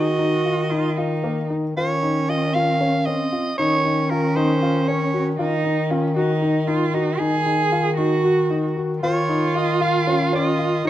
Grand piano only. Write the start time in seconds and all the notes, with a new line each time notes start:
0.19 D#4
0.45 F4
0.71 D#4
0.98 F4
1.24 A#3
1.50 D#4
1.77 F4
2.03 D#4
2.29 F4
2.55 F4
2.81 C#4
3.07 C#4
3.32 F4
3.59 D#4
3.85 D#4
4.11 F4
4.37 D#4
4.62 F4
4.88 C#4
5.14 F#4
5.39 F4
5.64 D#4
5.91 F4
6.16 F#4
6.42 D#4
6.68 D#4
6.94 F#4
7.20 D#4
7.46 D#4
7.72 F4
7.98 D#4
8.24 F#4
8.50 D#4
8.77 F#4
9.03 F4
9.29 D#4
9.55 F4
9.81 F4
10.07 C#4
10.33 C#4
10.59 F4
10.85 D#4